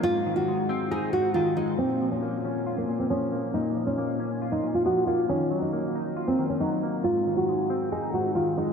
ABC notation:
X:1
M:4/4
L:1/16
Q:1/4=137
K:Bbm
V:1 name="Nylon-string guitar"
F3 G4- G A2 G2 F2 E2 | C3 D6 B,2 C D4 | E3 D6 E2 F G2 F2 | D3 E6 C2 D E4 |
F3 G4- G A2 G2 F2 E2 |]
V:2 name="Clean electric guitar" clef=bass
A,,2 E,2 A,2 C2 E2 A,,2 E,2 A,2 | B,,2 F,2 B,2 D2 F2 B,,2 F,2 B,2 | B,,2 F,2 B,2 D2 F2 B,,2 F,2 B,2 | E,2 G,2 B,2 E2 F2 E,2 G,2 B,2 |
A,,2 E,2 A,2 C2 E2 A,,2 E,2 A,2 |]